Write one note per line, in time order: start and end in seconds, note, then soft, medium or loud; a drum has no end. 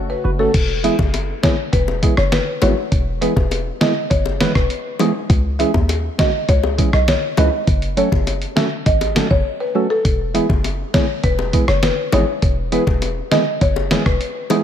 0.00 0.15 F#1 medium
0.00 0.50 C#3 medium
0.00 0.52 A3 medium
0.00 0.52 F#4 medium
0.10 0.20 B4 medium
0.24 0.48 F#1 medium
0.24 0.30 F#4 medium
0.24 0.31 B4 medium
0.39 0.51 A3 medium
0.39 0.51 C#4 medium
0.39 0.51 F#4 medium
0.39 0.49 A4 medium
0.39 0.52 A4 medium
0.54 0.89 E1 loud
0.54 kick loud
0.54 closed hi-hat medium
0.54 crash loud
0.83 0.96 E3 medium
0.83 0.96 G#3 medium
0.83 0.96 B3 medium
0.83 0.96 E4 medium
0.83 0.96 G#4 medium
0.83 0.94 E5 medium
0.83 closed hi-hat medium
0.99 1.34 F#1 medium
0.99 kick medium
0.99 high bongo medium
1.14 closed hi-hat medium
1.14 high bongo medium
1.43 1.55 E3 medium
1.43 1.55 G#3 medium
1.43 1.55 B3 medium
1.43 1.55 E4 medium
1.43 1.55 G#4 medium
1.43 1.53 C#5 medium
1.43 kick loud
1.43 snare loud
1.43 closed hi-hat medium
1.73 2.08 E1 loud
1.73 1.83 B4 medium
1.73 kick medium
1.73 closed hi-hat medium
1.88 high bongo medium
2.02 2.15 E3 medium
2.02 2.15 G#3 medium
2.02 2.15 B3 medium
2.02 2.15 E4 medium
2.02 2.15 G#4 medium
2.02 kick loud
2.02 closed hi-hat medium
2.17 2.41 F#1 loud
2.17 2.28 C#5 medium
2.17 cross-stick loud
2.32 2.42 B4 medium
2.32 snare loud
2.32 closed hi-hat medium
2.62 2.74 G#1 medium
2.62 2.74 E3 medium
2.62 2.74 G#3 medium
2.62 2.74 B3 medium
2.62 2.74 E4 medium
2.62 2.74 F#4 medium
2.62 2.72 C#5 medium
2.62 closed hi-hat medium
2.62 high bongo medium
2.62 low bongo medium
2.92 3.27 E1 loud
2.92 kick loud
2.92 closed hi-hat medium
3.21 3.33 E3 medium
3.21 3.33 G#3 medium
3.21 3.34 B3 medium
3.21 3.34 E4 medium
3.21 3.34 G#4 medium
3.21 3.32 B4 medium
3.21 closed hi-hat medium
3.36 3.71 E1 medium
3.36 kick medium
3.36 high bongo medium
3.51 closed hi-hat medium
3.51 high bongo medium
3.81 3.93 E3 medium
3.81 3.93 G#3 medium
3.81 3.93 B3 medium
3.81 3.93 E4 medium
3.81 3.93 G#4 medium
3.81 3.91 D#5 medium
3.81 snare loud
3.81 closed hi-hat medium
4.10 4.46 F#1 loud
4.10 4.21 C#5 medium
4.10 kick medium
4.10 closed hi-hat medium
4.26 high bongo medium
4.40 4.52 E3 medium
4.40 4.52 G#3 medium
4.40 4.52 B3 medium
4.40 4.53 E4 medium
4.40 4.53 B4 medium
4.40 snare loud
4.40 closed hi-hat medium
4.55 4.67 E1 medium
4.55 4.65 B4 medium
4.55 kick loud
4.55 cross-stick loud
4.70 closed hi-hat medium
4.99 5.12 E3 medium
4.99 5.12 G#3 medium
4.99 5.12 B3 medium
4.99 5.12 E4 medium
4.99 5.12 G#4 loud
4.99 closed hi-hat medium
4.99 high bongo medium
4.99 low bongo medium
5.30 5.64 C#2 loud
5.30 kick loud
5.30 closed hi-hat medium
5.59 5.71 E3 medium
5.59 5.71 G#3 medium
5.59 5.71 C#4 medium
5.59 5.71 E4 medium
5.59 5.72 G#4 medium
5.59 5.69 E5 medium
5.59 closed hi-hat medium
5.74 6.09 D#2 medium
5.74 kick medium
5.74 high bongo medium
5.89 closed hi-hat medium
5.89 high bongo medium
6.18 6.30 E3 medium
6.18 6.31 G#3 medium
6.18 6.31 C#4 medium
6.18 6.31 E4 medium
6.18 6.31 F#4 medium
6.18 6.29 D#5 medium
6.18 kick loud
6.18 snare loud
6.18 closed hi-hat medium
6.49 6.83 C#2 medium
6.49 6.59 C#5 medium
6.49 kick medium
6.49 closed hi-hat medium
6.63 high bongo medium
6.78 6.90 E3 medium
6.78 6.90 G#3 medium
6.78 6.90 C#4 medium
6.78 6.90 E4 medium
6.78 6.90 G#4 medium
6.78 kick loud
6.78 closed hi-hat medium
6.93 7.16 B1 loud
6.93 7.03 D#5 medium
6.93 cross-stick loud
7.08 7.18 C#5 medium
7.08 snare loud
7.08 closed hi-hat medium
7.37 7.49 C#2 loud
7.37 7.49 E3 medium
7.37 7.49 G#3 medium
7.37 7.50 C#4 medium
7.37 7.50 E4 medium
7.37 7.50 B4 medium
7.37 7.48 D#5 medium
7.37 closed hi-hat medium
7.37 high bongo medium
7.37 low bongo medium
7.67 8.02 F#1 loud
7.67 kick loud
7.67 closed hi-hat medium
7.82 closed hi-hat soft
7.97 8.09 F#3 medium
7.97 8.09 A3 medium
7.97 8.09 C#4 medium
7.97 8.09 F#4 medium
7.97 8.09 A4 medium
7.97 8.07 C#5 medium
7.97 closed hi-hat medium
8.12 8.47 F#1 medium
8.12 kick medium
8.12 high bongo medium
8.27 closed hi-hat medium
8.27 high bongo medium
8.42 closed hi-hat medium
8.56 8.68 F#3 medium
8.56 8.68 A3 medium
8.56 8.68 C#4 medium
8.56 8.68 F#4 medium
8.56 8.68 A4 medium
8.56 8.67 E5 medium
8.56 snare loud
8.56 closed hi-hat medium
8.86 9.21 G#1 loud
8.86 8.96 D#5 medium
8.86 kick medium
8.86 closed hi-hat medium
9.01 closed hi-hat medium
9.01 high bongo medium
9.15 9.27 F#3 medium
9.15 9.28 A3 medium
9.15 9.28 C#4 medium
9.15 9.28 F#4 medium
9.15 9.28 A4 medium
9.15 snare loud
9.15 closed hi-hat medium
9.31 9.42 F#1 medium
9.31 9.41 C#5 medium
9.31 kick medium
9.60 9.70 B4 medium
9.75 9.87 F#3 medium
9.75 9.87 A3 medium
9.75 9.87 C#4 medium
9.75 9.87 F#4 medium
9.75 9.87 A4 medium
9.90 10.00 A4 medium
10.05 10.40 E1 loud
10.05 kick loud
10.05 closed hi-hat medium
10.34 10.46 E3 medium
10.34 10.46 G#3 medium
10.34 10.46 B3 medium
10.34 10.47 E4 medium
10.34 10.47 G#4 medium
10.34 10.45 E5 medium
10.34 closed hi-hat medium
10.49 10.84 F#1 medium
10.49 kick medium
10.49 high bongo medium
10.64 closed hi-hat medium
10.64 high bongo medium
10.94 11.06 E3 medium
10.94 11.06 G#3 medium
10.94 11.06 B3 medium
10.94 11.06 E4 medium
10.94 11.06 G#4 medium
10.94 11.04 C#5 medium
10.94 kick loud
10.94 snare loud
10.94 closed hi-hat medium
11.23 11.58 E1 medium
11.23 11.34 B4 medium
11.23 kick medium
11.23 closed hi-hat medium
11.39 high bongo medium
11.53 11.65 E3 medium
11.53 11.65 G#3 medium
11.53 11.65 B3 medium
11.53 11.65 E4 medium
11.53 11.65 G#4 medium
11.53 kick loud
11.53 closed hi-hat medium
11.68 11.91 F#1 loud
11.68 11.78 C#5 medium
11.68 cross-stick loud
11.83 11.93 B4 medium
11.83 snare loud
11.83 closed hi-hat medium
12.12 12.24 G#1 medium
12.12 12.25 E3 medium
12.12 12.25 G#3 medium
12.12 12.25 B3 medium
12.12 12.25 E4 medium
12.12 12.25 G#4 medium
12.12 12.23 C#5 medium
12.12 closed hi-hat medium
12.12 high bongo medium
12.12 low bongo medium
12.42 12.77 E1 loud
12.42 kick loud
12.42 closed hi-hat medium
12.72 12.84 E3 medium
12.72 12.84 G#3 medium
12.72 12.84 B3 medium
12.72 12.84 E4 medium
12.72 12.84 G#4 medium
12.72 12.82 B4 medium
12.72 closed hi-hat medium
12.87 13.22 E1 medium
12.87 kick medium
12.87 high bongo medium
13.02 closed hi-hat medium
13.02 high bongo medium
13.31 13.43 E3 medium
13.31 13.43 G#3 medium
13.31 13.44 B3 medium
13.31 13.44 E4 medium
13.31 13.44 G#4 medium
13.31 13.42 D#5 medium
13.31 snare loud
13.31 closed hi-hat medium
13.61 13.96 F#1 loud
13.61 13.72 C#5 medium
13.61 kick medium
13.61 closed hi-hat medium
13.76 high bongo medium
13.91 14.03 E3 medium
13.91 14.03 G#3 medium
13.91 14.03 B3 medium
13.91 14.03 E4 medium
13.91 14.03 G#4 medium
13.91 snare loud
13.91 closed hi-hat medium
14.06 14.18 E1 loud
14.06 14.16 B4 medium
14.06 kick loud
14.06 cross-stick loud
14.21 closed hi-hat medium
14.50 14.62 E3 medium
14.50 14.62 G#3 medium
14.50 14.62 B3 medium
14.50 14.62 E4 medium
14.50 14.63 G#4 loud
14.50 closed hi-hat medium
14.50 high bongo medium
14.50 low bongo medium